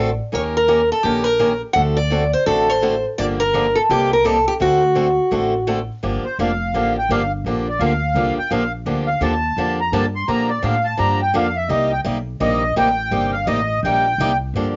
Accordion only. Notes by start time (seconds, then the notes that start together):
6.25 C5
6.41 F5
6.98 G5
7.12 F5
7.68 D5
7.80 F5
8.39 G5
8.51 F5
9.07 F5
9.22 A5
9.81 A#5
9.93 A5
10.16 C6
10.28 A#5
10.49 D5
10.64 F5
10.84 A5
10.98 A#5
11.22 G5
11.36 F5
11.56 E5
11.69 D#5
11.92 G5
12.42 D#5
12.77 G5
13.33 F5
13.47 D#5
13.84 G5